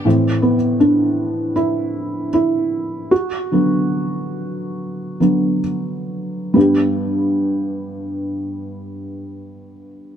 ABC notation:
X:1
M:4/4
L:1/8
Q:1/4=70
K:G
V:1 name="Felt piano"
z B, D2 E2 E2 | F6 z2 | [G,B,DG]8 |]
V:2 name="Felt piano" clef=bass
[A,,E,C] z6 z | z [D,F,B,]4 [D,F,B,] z2 | G,,8 |]